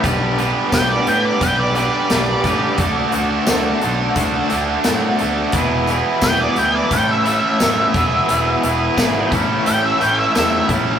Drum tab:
HH |xxxxxxxx|xxxxxxxx|xxxxxxxx|xxxxxxxx|
TB |--x---x-|--x---x-|--x---x-|--x---x-|
SD |--o---o-|--o---o-|--o---o-|--o---o-|
BD |o-o-o--o|o---o---|o-o-o--o|--oo---o|